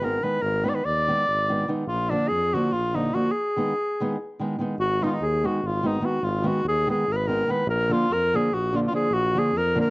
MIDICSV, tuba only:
0, 0, Header, 1, 2, 480
1, 0, Start_track
1, 0, Tempo, 413508
1, 485, Time_signature, 7, 3, 24, 8
1, 11493, End_track
2, 0, Start_track
2, 0, Title_t, "Tuba"
2, 0, Program_c, 0, 58
2, 0, Note_on_c, 0, 32, 90
2, 203, Note_off_c, 0, 32, 0
2, 485, Note_on_c, 0, 32, 108
2, 785, Note_off_c, 0, 32, 0
2, 983, Note_on_c, 0, 39, 87
2, 1284, Note_off_c, 0, 39, 0
2, 1485, Note_on_c, 0, 32, 79
2, 1898, Note_off_c, 0, 32, 0
2, 2165, Note_on_c, 0, 34, 90
2, 2468, Note_off_c, 0, 34, 0
2, 2673, Note_on_c, 0, 41, 80
2, 2973, Note_off_c, 0, 41, 0
2, 3160, Note_on_c, 0, 34, 77
2, 3576, Note_off_c, 0, 34, 0
2, 5536, Note_on_c, 0, 32, 88
2, 5836, Note_off_c, 0, 32, 0
2, 6039, Note_on_c, 0, 39, 86
2, 6338, Note_off_c, 0, 39, 0
2, 6524, Note_on_c, 0, 32, 88
2, 6938, Note_off_c, 0, 32, 0
2, 7221, Note_on_c, 0, 32, 108
2, 7519, Note_off_c, 0, 32, 0
2, 7702, Note_on_c, 0, 39, 90
2, 8005, Note_off_c, 0, 39, 0
2, 8209, Note_on_c, 0, 32, 89
2, 8620, Note_off_c, 0, 32, 0
2, 8890, Note_on_c, 0, 34, 112
2, 9190, Note_off_c, 0, 34, 0
2, 9398, Note_on_c, 0, 41, 88
2, 9694, Note_off_c, 0, 41, 0
2, 9887, Note_on_c, 0, 34, 84
2, 10297, Note_off_c, 0, 34, 0
2, 10563, Note_on_c, 0, 34, 103
2, 10863, Note_off_c, 0, 34, 0
2, 11054, Note_on_c, 0, 41, 89
2, 11355, Note_off_c, 0, 41, 0
2, 11493, End_track
0, 0, End_of_file